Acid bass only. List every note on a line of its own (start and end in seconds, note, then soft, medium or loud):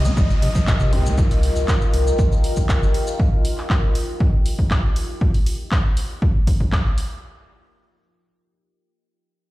0.05 0.11 D#4 loud
0.17 0.28 G3 medium
0.42 0.49 C3 medium
0.55 0.59 F3 loud
0.67 0.72 A#2 medium
0.80 0.94 C3 medium
0.93 1.07 C2 medium
1.06 1.12 D#4 loud